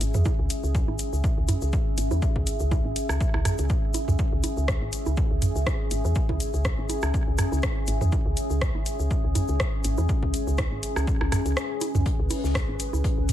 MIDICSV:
0, 0, Header, 1, 5, 480
1, 0, Start_track
1, 0, Key_signature, 4, "minor"
1, 0, Tempo, 491803
1, 250, Time_signature, 4, 2, 24, 8
1, 13006, End_track
2, 0, Start_track
2, 0, Title_t, "Synth texture"
2, 0, Program_c, 0, 99
2, 11769, Note_on_c, 0, 71, 90
2, 13006, Note_off_c, 0, 71, 0
2, 13006, End_track
3, 0, Start_track
3, 0, Title_t, "Ambient pad"
3, 0, Program_c, 1, 92
3, 0, Note_on_c, 1, 61, 92
3, 0, Note_on_c, 1, 68, 87
3, 0, Note_on_c, 1, 76, 74
3, 13006, Note_off_c, 1, 61, 0
3, 13006, Note_off_c, 1, 68, 0
3, 13006, Note_off_c, 1, 76, 0
3, 13006, End_track
4, 0, Start_track
4, 0, Title_t, "FM bass"
4, 0, Program_c, 2, 39
4, 9, Note_on_c, 2, 32, 96
4, 117, Note_off_c, 2, 32, 0
4, 142, Note_on_c, 2, 40, 101
4, 230, Note_off_c, 2, 40, 0
4, 382, Note_on_c, 2, 37, 96
4, 470, Note_off_c, 2, 37, 0
4, 621, Note_on_c, 2, 37, 85
4, 812, Note_off_c, 2, 37, 0
4, 863, Note_on_c, 2, 32, 95
4, 950, Note_off_c, 2, 32, 0
4, 1101, Note_on_c, 2, 37, 79
4, 1189, Note_off_c, 2, 37, 0
4, 1343, Note_on_c, 2, 37, 82
4, 1430, Note_off_c, 2, 37, 0
4, 1583, Note_on_c, 2, 37, 88
4, 1670, Note_off_c, 2, 37, 0
4, 1931, Note_on_c, 2, 32, 94
4, 2037, Note_off_c, 2, 32, 0
4, 2062, Note_on_c, 2, 40, 97
4, 2150, Note_off_c, 2, 40, 0
4, 2301, Note_on_c, 2, 37, 101
4, 2389, Note_off_c, 2, 37, 0
4, 2541, Note_on_c, 2, 37, 91
4, 2732, Note_off_c, 2, 37, 0
4, 2781, Note_on_c, 2, 32, 100
4, 2869, Note_off_c, 2, 32, 0
4, 3021, Note_on_c, 2, 37, 80
4, 3109, Note_off_c, 2, 37, 0
4, 3261, Note_on_c, 2, 37, 82
4, 3349, Note_off_c, 2, 37, 0
4, 3503, Note_on_c, 2, 37, 90
4, 3590, Note_off_c, 2, 37, 0
4, 3983, Note_on_c, 2, 37, 96
4, 4070, Note_off_c, 2, 37, 0
4, 4222, Note_on_c, 2, 37, 98
4, 4310, Note_off_c, 2, 37, 0
4, 4462, Note_on_c, 2, 37, 88
4, 4653, Note_off_c, 2, 37, 0
4, 4702, Note_on_c, 2, 32, 94
4, 4790, Note_off_c, 2, 32, 0
4, 4942, Note_on_c, 2, 37, 81
4, 5030, Note_off_c, 2, 37, 0
4, 5181, Note_on_c, 2, 37, 81
4, 5269, Note_off_c, 2, 37, 0
4, 5423, Note_on_c, 2, 37, 87
4, 5510, Note_off_c, 2, 37, 0
4, 5770, Note_on_c, 2, 32, 93
4, 5877, Note_off_c, 2, 32, 0
4, 5901, Note_on_c, 2, 40, 102
4, 5990, Note_off_c, 2, 40, 0
4, 6141, Note_on_c, 2, 37, 96
4, 6229, Note_off_c, 2, 37, 0
4, 6381, Note_on_c, 2, 37, 86
4, 6572, Note_off_c, 2, 37, 0
4, 6621, Note_on_c, 2, 32, 95
4, 6709, Note_off_c, 2, 32, 0
4, 6861, Note_on_c, 2, 37, 84
4, 6949, Note_off_c, 2, 37, 0
4, 7100, Note_on_c, 2, 37, 82
4, 7189, Note_off_c, 2, 37, 0
4, 7340, Note_on_c, 2, 37, 92
4, 7429, Note_off_c, 2, 37, 0
4, 7688, Note_on_c, 2, 32, 96
4, 7796, Note_off_c, 2, 32, 0
4, 7819, Note_on_c, 2, 40, 103
4, 7908, Note_off_c, 2, 40, 0
4, 8059, Note_on_c, 2, 37, 102
4, 8148, Note_off_c, 2, 37, 0
4, 8299, Note_on_c, 2, 37, 90
4, 8491, Note_off_c, 2, 37, 0
4, 8539, Note_on_c, 2, 32, 96
4, 8628, Note_off_c, 2, 32, 0
4, 8780, Note_on_c, 2, 37, 80
4, 8869, Note_off_c, 2, 37, 0
4, 9020, Note_on_c, 2, 37, 82
4, 9109, Note_off_c, 2, 37, 0
4, 9261, Note_on_c, 2, 37, 90
4, 9349, Note_off_c, 2, 37, 0
4, 9608, Note_on_c, 2, 32, 95
4, 9716, Note_off_c, 2, 32, 0
4, 9740, Note_on_c, 2, 40, 102
4, 9829, Note_off_c, 2, 40, 0
4, 9980, Note_on_c, 2, 37, 104
4, 10069, Note_off_c, 2, 37, 0
4, 10221, Note_on_c, 2, 37, 93
4, 10412, Note_off_c, 2, 37, 0
4, 10461, Note_on_c, 2, 32, 94
4, 10549, Note_off_c, 2, 32, 0
4, 10701, Note_on_c, 2, 37, 82
4, 10789, Note_off_c, 2, 37, 0
4, 10940, Note_on_c, 2, 37, 83
4, 11029, Note_off_c, 2, 37, 0
4, 11181, Note_on_c, 2, 37, 92
4, 11269, Note_off_c, 2, 37, 0
4, 11661, Note_on_c, 2, 37, 92
4, 11749, Note_off_c, 2, 37, 0
4, 11901, Note_on_c, 2, 37, 99
4, 11989, Note_off_c, 2, 37, 0
4, 12141, Note_on_c, 2, 37, 90
4, 12332, Note_off_c, 2, 37, 0
4, 12383, Note_on_c, 2, 32, 92
4, 12470, Note_off_c, 2, 32, 0
4, 12622, Note_on_c, 2, 37, 83
4, 12710, Note_off_c, 2, 37, 0
4, 12862, Note_on_c, 2, 37, 82
4, 12950, Note_off_c, 2, 37, 0
4, 13006, End_track
5, 0, Start_track
5, 0, Title_t, "Drums"
5, 9, Note_on_c, 9, 42, 92
5, 11, Note_on_c, 9, 82, 87
5, 107, Note_off_c, 9, 42, 0
5, 108, Note_off_c, 9, 82, 0
5, 137, Note_on_c, 9, 82, 57
5, 141, Note_on_c, 9, 45, 78
5, 235, Note_off_c, 9, 82, 0
5, 238, Note_off_c, 9, 45, 0
5, 242, Note_on_c, 9, 82, 42
5, 248, Note_on_c, 9, 36, 124
5, 249, Note_on_c, 9, 61, 43
5, 339, Note_off_c, 9, 82, 0
5, 346, Note_off_c, 9, 36, 0
5, 346, Note_off_c, 9, 61, 0
5, 489, Note_on_c, 9, 42, 95
5, 489, Note_on_c, 9, 82, 96
5, 586, Note_off_c, 9, 82, 0
5, 587, Note_off_c, 9, 42, 0
5, 621, Note_on_c, 9, 82, 50
5, 718, Note_off_c, 9, 82, 0
5, 728, Note_on_c, 9, 36, 115
5, 733, Note_on_c, 9, 82, 38
5, 826, Note_off_c, 9, 36, 0
5, 830, Note_off_c, 9, 82, 0
5, 860, Note_on_c, 9, 61, 42
5, 958, Note_off_c, 9, 61, 0
5, 964, Note_on_c, 9, 82, 102
5, 968, Note_on_c, 9, 42, 97
5, 1062, Note_off_c, 9, 82, 0
5, 1066, Note_off_c, 9, 42, 0
5, 1105, Note_on_c, 9, 82, 56
5, 1202, Note_off_c, 9, 82, 0
5, 1208, Note_on_c, 9, 36, 121
5, 1211, Note_on_c, 9, 82, 44
5, 1306, Note_off_c, 9, 36, 0
5, 1309, Note_off_c, 9, 82, 0
5, 1445, Note_on_c, 9, 82, 91
5, 1448, Note_on_c, 9, 45, 80
5, 1448, Note_on_c, 9, 61, 50
5, 1450, Note_on_c, 9, 42, 94
5, 1543, Note_off_c, 9, 82, 0
5, 1546, Note_off_c, 9, 45, 0
5, 1546, Note_off_c, 9, 61, 0
5, 1547, Note_off_c, 9, 42, 0
5, 1576, Note_on_c, 9, 82, 56
5, 1673, Note_off_c, 9, 82, 0
5, 1683, Note_on_c, 9, 82, 38
5, 1688, Note_on_c, 9, 36, 127
5, 1780, Note_off_c, 9, 82, 0
5, 1786, Note_off_c, 9, 36, 0
5, 1929, Note_on_c, 9, 42, 95
5, 1929, Note_on_c, 9, 82, 90
5, 2026, Note_off_c, 9, 82, 0
5, 2027, Note_off_c, 9, 42, 0
5, 2058, Note_on_c, 9, 82, 52
5, 2060, Note_on_c, 9, 61, 46
5, 2156, Note_off_c, 9, 82, 0
5, 2157, Note_off_c, 9, 61, 0
5, 2167, Note_on_c, 9, 82, 38
5, 2169, Note_on_c, 9, 36, 124
5, 2265, Note_off_c, 9, 82, 0
5, 2266, Note_off_c, 9, 36, 0
5, 2300, Note_on_c, 9, 36, 64
5, 2398, Note_off_c, 9, 36, 0
5, 2409, Note_on_c, 9, 42, 100
5, 2409, Note_on_c, 9, 82, 93
5, 2506, Note_off_c, 9, 82, 0
5, 2507, Note_off_c, 9, 42, 0
5, 2533, Note_on_c, 9, 82, 52
5, 2631, Note_off_c, 9, 82, 0
5, 2648, Note_on_c, 9, 61, 45
5, 2649, Note_on_c, 9, 36, 111
5, 2651, Note_on_c, 9, 82, 35
5, 2746, Note_off_c, 9, 36, 0
5, 2746, Note_off_c, 9, 61, 0
5, 2749, Note_off_c, 9, 82, 0
5, 2889, Note_on_c, 9, 42, 93
5, 2895, Note_on_c, 9, 82, 87
5, 2987, Note_off_c, 9, 42, 0
5, 2992, Note_off_c, 9, 82, 0
5, 3019, Note_on_c, 9, 37, 54
5, 3020, Note_on_c, 9, 82, 57
5, 3117, Note_off_c, 9, 37, 0
5, 3118, Note_off_c, 9, 82, 0
5, 3129, Note_on_c, 9, 36, 118
5, 3131, Note_on_c, 9, 82, 40
5, 3226, Note_off_c, 9, 36, 0
5, 3228, Note_off_c, 9, 82, 0
5, 3260, Note_on_c, 9, 37, 55
5, 3260, Note_on_c, 9, 61, 43
5, 3358, Note_off_c, 9, 37, 0
5, 3358, Note_off_c, 9, 61, 0
5, 3369, Note_on_c, 9, 37, 55
5, 3369, Note_on_c, 9, 42, 93
5, 3369, Note_on_c, 9, 45, 77
5, 3378, Note_on_c, 9, 82, 89
5, 3466, Note_off_c, 9, 37, 0
5, 3466, Note_off_c, 9, 45, 0
5, 3467, Note_off_c, 9, 42, 0
5, 3476, Note_off_c, 9, 82, 0
5, 3495, Note_on_c, 9, 82, 53
5, 3502, Note_on_c, 9, 42, 38
5, 3592, Note_off_c, 9, 82, 0
5, 3600, Note_off_c, 9, 42, 0
5, 3604, Note_on_c, 9, 82, 36
5, 3609, Note_on_c, 9, 36, 127
5, 3702, Note_off_c, 9, 82, 0
5, 3706, Note_off_c, 9, 36, 0
5, 3845, Note_on_c, 9, 82, 96
5, 3849, Note_on_c, 9, 42, 94
5, 3849, Note_on_c, 9, 61, 45
5, 3943, Note_off_c, 9, 82, 0
5, 3947, Note_off_c, 9, 42, 0
5, 3947, Note_off_c, 9, 61, 0
5, 3981, Note_on_c, 9, 45, 75
5, 3988, Note_on_c, 9, 82, 53
5, 4078, Note_off_c, 9, 45, 0
5, 4086, Note_off_c, 9, 82, 0
5, 4086, Note_on_c, 9, 82, 39
5, 4089, Note_on_c, 9, 36, 124
5, 4183, Note_off_c, 9, 82, 0
5, 4187, Note_off_c, 9, 36, 0
5, 4326, Note_on_c, 9, 82, 92
5, 4329, Note_on_c, 9, 61, 43
5, 4330, Note_on_c, 9, 42, 93
5, 4424, Note_off_c, 9, 82, 0
5, 4427, Note_off_c, 9, 61, 0
5, 4428, Note_off_c, 9, 42, 0
5, 4463, Note_on_c, 9, 82, 47
5, 4561, Note_off_c, 9, 82, 0
5, 4569, Note_on_c, 9, 36, 114
5, 4569, Note_on_c, 9, 37, 81
5, 4569, Note_on_c, 9, 82, 40
5, 4667, Note_off_c, 9, 36, 0
5, 4667, Note_off_c, 9, 37, 0
5, 4667, Note_off_c, 9, 82, 0
5, 4807, Note_on_c, 9, 82, 90
5, 4809, Note_on_c, 9, 42, 94
5, 4905, Note_off_c, 9, 82, 0
5, 4907, Note_off_c, 9, 42, 0
5, 4938, Note_on_c, 9, 82, 54
5, 4941, Note_on_c, 9, 61, 43
5, 5036, Note_off_c, 9, 82, 0
5, 5038, Note_off_c, 9, 61, 0
5, 5042, Note_on_c, 9, 82, 35
5, 5049, Note_on_c, 9, 36, 123
5, 5140, Note_off_c, 9, 82, 0
5, 5147, Note_off_c, 9, 36, 0
5, 5289, Note_on_c, 9, 45, 78
5, 5290, Note_on_c, 9, 42, 91
5, 5292, Note_on_c, 9, 82, 80
5, 5387, Note_off_c, 9, 42, 0
5, 5387, Note_off_c, 9, 45, 0
5, 5389, Note_off_c, 9, 82, 0
5, 5423, Note_on_c, 9, 82, 54
5, 5521, Note_off_c, 9, 82, 0
5, 5528, Note_on_c, 9, 61, 42
5, 5529, Note_on_c, 9, 36, 115
5, 5530, Note_on_c, 9, 37, 84
5, 5530, Note_on_c, 9, 82, 36
5, 5626, Note_off_c, 9, 36, 0
5, 5626, Note_off_c, 9, 61, 0
5, 5628, Note_off_c, 9, 37, 0
5, 5628, Note_off_c, 9, 82, 0
5, 5769, Note_on_c, 9, 42, 91
5, 5769, Note_on_c, 9, 82, 79
5, 5866, Note_off_c, 9, 82, 0
5, 5867, Note_off_c, 9, 42, 0
5, 5903, Note_on_c, 9, 82, 53
5, 6001, Note_off_c, 9, 82, 0
5, 6002, Note_on_c, 9, 82, 37
5, 6009, Note_on_c, 9, 36, 121
5, 6100, Note_off_c, 9, 82, 0
5, 6106, Note_off_c, 9, 36, 0
5, 6141, Note_on_c, 9, 36, 55
5, 6141, Note_on_c, 9, 61, 44
5, 6238, Note_off_c, 9, 36, 0
5, 6238, Note_off_c, 9, 61, 0
5, 6249, Note_on_c, 9, 42, 88
5, 6252, Note_on_c, 9, 82, 88
5, 6347, Note_off_c, 9, 42, 0
5, 6349, Note_off_c, 9, 82, 0
5, 6380, Note_on_c, 9, 82, 45
5, 6477, Note_off_c, 9, 82, 0
5, 6486, Note_on_c, 9, 82, 37
5, 6489, Note_on_c, 9, 36, 108
5, 6490, Note_on_c, 9, 37, 79
5, 6584, Note_off_c, 9, 82, 0
5, 6586, Note_off_c, 9, 36, 0
5, 6588, Note_off_c, 9, 37, 0
5, 6728, Note_on_c, 9, 61, 43
5, 6729, Note_on_c, 9, 82, 77
5, 6730, Note_on_c, 9, 42, 87
5, 6826, Note_off_c, 9, 61, 0
5, 6827, Note_off_c, 9, 82, 0
5, 6828, Note_off_c, 9, 42, 0
5, 6850, Note_on_c, 9, 82, 56
5, 6860, Note_on_c, 9, 37, 56
5, 6947, Note_off_c, 9, 82, 0
5, 6958, Note_off_c, 9, 37, 0
5, 6968, Note_on_c, 9, 36, 112
5, 6971, Note_on_c, 9, 82, 39
5, 7066, Note_off_c, 9, 36, 0
5, 7069, Note_off_c, 9, 82, 0
5, 7203, Note_on_c, 9, 82, 79
5, 7208, Note_on_c, 9, 37, 61
5, 7208, Note_on_c, 9, 45, 75
5, 7209, Note_on_c, 9, 42, 90
5, 7300, Note_off_c, 9, 82, 0
5, 7305, Note_off_c, 9, 37, 0
5, 7305, Note_off_c, 9, 45, 0
5, 7306, Note_off_c, 9, 42, 0
5, 7339, Note_on_c, 9, 61, 39
5, 7346, Note_on_c, 9, 82, 55
5, 7437, Note_off_c, 9, 61, 0
5, 7442, Note_off_c, 9, 82, 0
5, 7442, Note_on_c, 9, 82, 39
5, 7448, Note_on_c, 9, 36, 118
5, 7449, Note_on_c, 9, 37, 85
5, 7540, Note_off_c, 9, 82, 0
5, 7546, Note_off_c, 9, 36, 0
5, 7547, Note_off_c, 9, 37, 0
5, 7681, Note_on_c, 9, 82, 80
5, 7689, Note_on_c, 9, 42, 88
5, 7779, Note_off_c, 9, 82, 0
5, 7786, Note_off_c, 9, 42, 0
5, 7818, Note_on_c, 9, 45, 71
5, 7823, Note_on_c, 9, 82, 50
5, 7916, Note_off_c, 9, 45, 0
5, 7920, Note_off_c, 9, 82, 0
5, 7924, Note_on_c, 9, 82, 35
5, 7927, Note_on_c, 9, 61, 39
5, 7928, Note_on_c, 9, 36, 118
5, 8021, Note_off_c, 9, 82, 0
5, 8025, Note_off_c, 9, 61, 0
5, 8026, Note_off_c, 9, 36, 0
5, 8168, Note_on_c, 9, 42, 88
5, 8168, Note_on_c, 9, 82, 77
5, 8266, Note_off_c, 9, 42, 0
5, 8266, Note_off_c, 9, 82, 0
5, 8298, Note_on_c, 9, 82, 51
5, 8395, Note_off_c, 9, 82, 0
5, 8408, Note_on_c, 9, 36, 102
5, 8408, Note_on_c, 9, 37, 81
5, 8408, Note_on_c, 9, 82, 37
5, 8505, Note_off_c, 9, 82, 0
5, 8506, Note_off_c, 9, 36, 0
5, 8506, Note_off_c, 9, 37, 0
5, 8540, Note_on_c, 9, 61, 39
5, 8637, Note_off_c, 9, 61, 0
5, 8648, Note_on_c, 9, 82, 85
5, 8649, Note_on_c, 9, 42, 85
5, 8746, Note_off_c, 9, 42, 0
5, 8746, Note_off_c, 9, 82, 0
5, 8778, Note_on_c, 9, 82, 51
5, 8876, Note_off_c, 9, 82, 0
5, 8888, Note_on_c, 9, 36, 110
5, 8888, Note_on_c, 9, 82, 36
5, 8986, Note_off_c, 9, 36, 0
5, 8986, Note_off_c, 9, 82, 0
5, 9128, Note_on_c, 9, 45, 74
5, 9128, Note_on_c, 9, 61, 41
5, 9129, Note_on_c, 9, 42, 82
5, 9131, Note_on_c, 9, 82, 90
5, 9226, Note_off_c, 9, 42, 0
5, 9226, Note_off_c, 9, 45, 0
5, 9226, Note_off_c, 9, 61, 0
5, 9228, Note_off_c, 9, 82, 0
5, 9252, Note_on_c, 9, 82, 48
5, 9349, Note_off_c, 9, 82, 0
5, 9368, Note_on_c, 9, 36, 113
5, 9368, Note_on_c, 9, 37, 89
5, 9369, Note_on_c, 9, 82, 34
5, 9466, Note_off_c, 9, 36, 0
5, 9466, Note_off_c, 9, 37, 0
5, 9467, Note_off_c, 9, 82, 0
5, 9604, Note_on_c, 9, 82, 80
5, 9608, Note_on_c, 9, 42, 90
5, 9702, Note_off_c, 9, 82, 0
5, 9706, Note_off_c, 9, 42, 0
5, 9735, Note_on_c, 9, 82, 48
5, 9740, Note_on_c, 9, 61, 42
5, 9833, Note_off_c, 9, 82, 0
5, 9837, Note_off_c, 9, 61, 0
5, 9846, Note_on_c, 9, 82, 34
5, 9848, Note_on_c, 9, 36, 120
5, 9943, Note_off_c, 9, 82, 0
5, 9946, Note_off_c, 9, 36, 0
5, 9980, Note_on_c, 9, 36, 56
5, 10078, Note_off_c, 9, 36, 0
5, 10089, Note_on_c, 9, 42, 91
5, 10094, Note_on_c, 9, 82, 78
5, 10187, Note_off_c, 9, 42, 0
5, 10192, Note_off_c, 9, 82, 0
5, 10224, Note_on_c, 9, 82, 47
5, 10321, Note_off_c, 9, 82, 0
5, 10321, Note_on_c, 9, 82, 36
5, 10328, Note_on_c, 9, 36, 113
5, 10329, Note_on_c, 9, 61, 40
5, 10330, Note_on_c, 9, 37, 84
5, 10330, Note_on_c, 9, 42, 33
5, 10419, Note_off_c, 9, 82, 0
5, 10426, Note_off_c, 9, 36, 0
5, 10426, Note_off_c, 9, 61, 0
5, 10427, Note_off_c, 9, 37, 0
5, 10427, Note_off_c, 9, 42, 0
5, 10570, Note_on_c, 9, 42, 91
5, 10571, Note_on_c, 9, 82, 89
5, 10667, Note_off_c, 9, 42, 0
5, 10669, Note_off_c, 9, 82, 0
5, 10700, Note_on_c, 9, 37, 63
5, 10704, Note_on_c, 9, 82, 50
5, 10798, Note_off_c, 9, 37, 0
5, 10801, Note_off_c, 9, 82, 0
5, 10809, Note_on_c, 9, 36, 115
5, 10809, Note_on_c, 9, 82, 38
5, 10906, Note_off_c, 9, 36, 0
5, 10907, Note_off_c, 9, 82, 0
5, 10941, Note_on_c, 9, 37, 59
5, 10941, Note_on_c, 9, 61, 43
5, 11039, Note_off_c, 9, 37, 0
5, 11039, Note_off_c, 9, 61, 0
5, 11049, Note_on_c, 9, 37, 66
5, 11049, Note_on_c, 9, 45, 77
5, 11050, Note_on_c, 9, 42, 89
5, 11056, Note_on_c, 9, 82, 80
5, 11147, Note_off_c, 9, 37, 0
5, 11147, Note_off_c, 9, 42, 0
5, 11147, Note_off_c, 9, 45, 0
5, 11153, Note_off_c, 9, 82, 0
5, 11182, Note_on_c, 9, 82, 50
5, 11183, Note_on_c, 9, 42, 34
5, 11280, Note_off_c, 9, 42, 0
5, 11280, Note_off_c, 9, 82, 0
5, 11290, Note_on_c, 9, 37, 87
5, 11290, Note_on_c, 9, 82, 36
5, 11387, Note_off_c, 9, 82, 0
5, 11388, Note_off_c, 9, 37, 0
5, 11527, Note_on_c, 9, 82, 87
5, 11529, Note_on_c, 9, 61, 44
5, 11530, Note_on_c, 9, 42, 91
5, 11625, Note_off_c, 9, 82, 0
5, 11627, Note_off_c, 9, 61, 0
5, 11628, Note_off_c, 9, 42, 0
5, 11661, Note_on_c, 9, 45, 80
5, 11661, Note_on_c, 9, 82, 57
5, 11759, Note_off_c, 9, 45, 0
5, 11759, Note_off_c, 9, 82, 0
5, 11769, Note_on_c, 9, 36, 117
5, 11770, Note_on_c, 9, 42, 91
5, 11770, Note_on_c, 9, 82, 39
5, 11866, Note_off_c, 9, 36, 0
5, 11867, Note_off_c, 9, 82, 0
5, 11868, Note_off_c, 9, 42, 0
5, 12006, Note_on_c, 9, 82, 89
5, 12009, Note_on_c, 9, 46, 75
5, 12009, Note_on_c, 9, 61, 46
5, 12010, Note_on_c, 9, 42, 93
5, 12104, Note_off_c, 9, 82, 0
5, 12107, Note_off_c, 9, 46, 0
5, 12107, Note_off_c, 9, 61, 0
5, 12108, Note_off_c, 9, 42, 0
5, 12143, Note_on_c, 9, 38, 48
5, 12145, Note_on_c, 9, 82, 50
5, 12241, Note_off_c, 9, 38, 0
5, 12241, Note_on_c, 9, 38, 103
5, 12243, Note_off_c, 9, 82, 0
5, 12249, Note_on_c, 9, 36, 113
5, 12250, Note_on_c, 9, 37, 91
5, 12253, Note_on_c, 9, 42, 77
5, 12254, Note_on_c, 9, 82, 35
5, 12339, Note_off_c, 9, 38, 0
5, 12347, Note_off_c, 9, 36, 0
5, 12348, Note_off_c, 9, 37, 0
5, 12350, Note_off_c, 9, 42, 0
5, 12352, Note_off_c, 9, 82, 0
5, 12487, Note_on_c, 9, 42, 66
5, 12490, Note_off_c, 9, 42, 0
5, 12490, Note_on_c, 9, 42, 92
5, 12490, Note_on_c, 9, 82, 86
5, 12588, Note_off_c, 9, 42, 0
5, 12588, Note_off_c, 9, 82, 0
5, 12621, Note_on_c, 9, 61, 43
5, 12628, Note_on_c, 9, 82, 55
5, 12719, Note_off_c, 9, 61, 0
5, 12726, Note_off_c, 9, 82, 0
5, 12729, Note_on_c, 9, 36, 116
5, 12733, Note_on_c, 9, 42, 92
5, 12735, Note_on_c, 9, 82, 36
5, 12827, Note_off_c, 9, 36, 0
5, 12830, Note_off_c, 9, 42, 0
5, 12832, Note_off_c, 9, 82, 0
5, 12969, Note_on_c, 9, 45, 85
5, 12970, Note_on_c, 9, 82, 84
5, 12971, Note_on_c, 9, 42, 91
5, 13006, Note_off_c, 9, 42, 0
5, 13006, Note_off_c, 9, 45, 0
5, 13006, Note_off_c, 9, 82, 0
5, 13006, End_track
0, 0, End_of_file